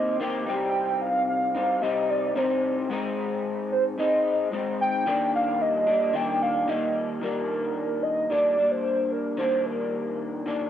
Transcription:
Already playing: clean electric guitar D#3 A#3 C4 G4, soft synth lead D#5
0.20 clean electric guitar D#3 A#3 C4 G4
0.46 clean electric guitar C3 G3 C4 D#4, soft synth lead G5
1.02 soft synth lead F5
1.28 soft synth lead F5
1.55 clean electric guitar G3 C4 D#4
1.82 clean electric guitar C3 G3 C4 D#4, soft synth lead D#5
2.10 soft synth lead D5
2.36 clean electric guitar C3 G3 C4 D#4, soft synth lead C5
2.89 clean electric guitar G#2 G#3 C4 D#4
3.72 soft synth lead C5
3.98 clean electric guitar G#2 G#3 C4 D#4, soft synth lead D#5
4.52 clean electric guitar G#2 G#3 C4 D#4
4.81 soft synth lead G5
5.06 clean electric guitar D#3 G3 A#3 D4
5.35 soft synth lead F5
5.62 soft synth lead D#5
5.87 clean electric guitar G3 A#3 D4
6.13 clean electric guitar D#3 G3 A#3 D4, soft synth lead G5
6.42 soft synth lead F5
6.68 clean electric guitar D#3 G3 A#3, soft synth lead D#5
7.21 clean electric guitar D#3 G3 A#3, soft synth lead A#4
7.25 clean electric guitar D4
8.03 soft synth lead D#5
8.30 clean electric guitar D#3 G3 A#3 D4, soft synth lead D5
8.57 clean electric guitar G3 A#3 D4
8.71 soft synth lead C5
9.12 soft synth lead A#4
9.37 clean electric guitar D#3 G3 A#3, soft synth lead C5
9.41 clean electric guitar D4
9.66 soft synth lead A#4
10.46 clean electric guitar D#3 G3 A#3 D4

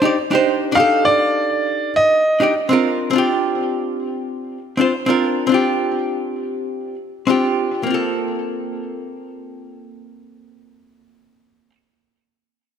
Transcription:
Already playing: grand piano C5
0.02 hollow-body jazz guitar D4 D#4 G4 D5
0.31 hollow-body jazz guitar D4 D#4 G4 C5
0.72 hollow-body jazz guitar D4 D#4, grand piano F5
0.77 hollow-body jazz guitar G4 A4
1.05 grand piano D5
1.96 grand piano D#5
2.40 hollow-body jazz guitar D4 D#4 G4 D5
2.69 hollow-body jazz guitar C4 D4 F4 A#4
3.11 hollow-body jazz guitar C4 D4
3.16 hollow-body jazz guitar F4 G4
4.77 hollow-body jazz guitar C4 D4 F4 C5
5.06 hollow-body jazz guitar C4 D4 F4 A#4
5.47 hollow-body jazz guitar C4 D4
5.52 hollow-body jazz guitar F4 G4
7.27 hollow-body jazz guitar C4 D4 F4 G4
7.83 hollow-body jazz guitar A#3 C4
7.90 hollow-body jazz guitar F4 A4

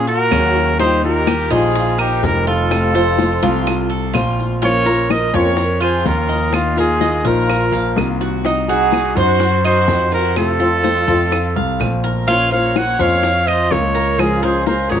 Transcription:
Already playing: grand piano A#2
0.07 cuban tres F#4, violin section F#4, trumpet A#4
0.31 grand piano D#2, nylon-string guitar F#3 A#3 C#4 G#4, cuban tres C#4, high bongo, low bongo, claves, maracas
0.56 high bongo, maracas
0.79 nylon-string guitar D#3 G3 D#4 F4, cuban tres D#4, violin section G4, trumpet C5, high bongo, maracas
1.03 nylon-string guitar G3 D#4 F4, violin section G4, trumpet A#4, high bongo
1.27 nylon-string guitar D#3 G3 D#4 F4, cuban tres G4, high bongo, claves, maracas
1.50 grand piano A#1, nylon-string guitar G3 D#4 F4, cuban tres D#4, violin section F4, trumpet G#4, high bongo, maracas
1.75 muted nylon-string guitar stroke, high bongo, maracas
1.98 violin section D#4, trumpet G4, cuban tres A#4, claves
2.22 grand piano F1, nylon-string guitar D#3 G3 D#4 F4, violin section G4, trumpet A#4, high bongo, low bongo, maracas
2.47 cuban tres F4, violin section F4, trumpet A4, high bongo, maracas
2.70 nylon-string guitar C3 F3 A3 C4 F4, high bongo, claves, maracas
2.94 nylon-string guitar F3 A3 C4 F4, cuban tres C5, high bongo, maracas
3.18 nylon-string guitar F3 A3 C4 F4, high bongo, maracas
3.42 grand piano C2, nylon-string guitar F3 A3 C4 F4, cuban tres F4, high bongo, maracas
3.67 muted nylon-string guitar stroke, high bongo, claves, maracas
3.90 cuban tres A4
4.14 grand piano A#1, nylon-string guitar F3 A3 C4, cuban tres F4, high bongo, low bongo, claves, maracas
4.18 nylon-string guitar F4
4.39 high bongo, maracas
4.62 nylon-string guitar F3 A#3 C#4 F4, cuban tres F4, violin section A#4, trumpet C#5, high bongo, maracas
4.86 nylon-string guitar A#3 C#4 F4, cuban tres A#4, high bongo
5.09 nylon-string guitar F3 A#3 C#4, violin section A#4, trumpet D#5, high bongo, claves, maracas
5.34 grand piano F2, nylon-string guitar A#3 C#4 F4, violin section A#4, cuban tres C#5, trumpet C#5, high bongo, maracas
5.57 muted nylon-string guitar stroke, high bongo, maracas
5.80 cuban tres F4, violin section G#4, trumpet C5, claves
6.04 grand piano D#2, nylon-string guitar F3 A#3 C#4 F4, violin section F4, trumpet A#4, high bongo, low bongo, maracas
6.29 cuban tres D#5, high bongo, maracas
6.51 nylon-string guitar D#3 A#3 D#4 F4, violin section A#3, trumpet F4, high bongo, claves, maracas
6.76 nylon-string guitar A#3 D#4 F4, violin section F4, trumpet G#4, cuban tres A#4, high bongo, maracas
7.01 nylon-string guitar D#3 A#3 F4, cuban tres D#5, high bongo, maracas
7.25 grand piano A#1, nylon-string guitar A#3 D#4 F4, violin section F4, cuban tres A#4, trumpet A#4, high bongo, maracas
7.50 muted nylon-string guitar stroke, high bongo, claves, maracas
7.71 grand piano A#1, cuban tres F5, maracas
7.96 grand piano C2, nylon-string guitar D#3 A#3 D#4 F4, high bongo, low bongo, claves, maracas
8.21 cuban tres F#4, high bongo, maracas
8.44 nylon-string guitar C4 D#4 F#4, cuban tres D#4, high bongo, maracas
8.68 violin section D#4, nylon-string guitar D#4 F#4, cuban tres F#4, trumpet G#4, high bongo, maracas
8.92 nylon-string guitar C4 D#4 F#4, high bongo, claves, maracas
9.15 grand piano F#2, nylon-string guitar D#4 F#4, violin section F#4, cuban tres C5, trumpet C5, high bongo, maracas
9.39 muted nylon-string guitar stroke, high bongo, maracas
9.64 cuban tres D#4, violin section F#4, trumpet C5, claves
9.88 grand piano F2, nylon-string guitar C4 D#4 F#4, high bongo, low bongo, maracas
10.12 violin section F#4, trumpet A#4, cuban tres C5, high bongo, maracas
10.36 nylon-string guitar C3 F3 A3 C4 F4, violin section F4, trumpet A4, high bongo, claves, maracas
10.59 nylon-string guitar F3 A3 C4 F4, cuban tres A4, high bongo
10.83 nylon-string guitar F3 A3 C4 F4, cuban tres C5, high bongo, maracas
11.07 grand piano F2, nylon-string guitar F3 A3 C4 F4, cuban tres A4, high bongo, maracas
11.32 muted nylon-string guitar stroke, high bongo, claves, maracas
11.56 grand piano C2, cuban tres F5
11.80 grand piano A#1, nylon-string guitar F3 A3 C4 F4, high bongo, low bongo, claves, maracas
12.04 cuban tres A#4, high bongo, maracas
12.27 nylon-string guitar F3 A#3 C#4 F4 C5, cuban tres F4, violin section C#5, trumpet F5, high bongo, maracas
12.51 nylon-string guitar A#3 C#4 F4 C5, cuban tres A#4, violin section C#5, trumpet F5, high bongo
12.76 nylon-string guitar A#3 C#4 F4 C5, violin section C#5, trumpet F#5, high bongo, claves, maracas
12.99 grand piano F2, nylon-string guitar A#3 C#4 F4 C5, cuban tres C#5, violin section C#5, trumpet F5, high bongo, maracas
13.23 muted nylon-string guitar stroke, high bongo, maracas
13.47 cuban tres F4, violin section C5, trumpet D#5, claves
13.70 grand piano C#2, nylon-string guitar A#3 C#4 F4, violin section A#4, trumpet C#5, high bongo, low bongo, maracas
13.95 cuban tres A#4, high bongo, maracas
14.18 nylon-string guitar C#3 F3 G#3 C#4 F4 A#4, violin section F4, trumpet G#4, high bongo, claves, maracas
14.42 nylon-string guitar F3 G#3 C#4 F4 A#4, cuban tres G#4, violin section G#4, trumpet C5, high bongo
14.66 nylon-string guitar G#3 C#4 F4 A#4, violin section G#4, cuban tres A#4, trumpet C5, high bongo, maracas
14.89 grand piano G#1, nylon-string guitar F3 G#3 C#4 F4 A#4, cuban tres G#4, trumpet C#5, high bongo, maracas
14.94 violin section A#4

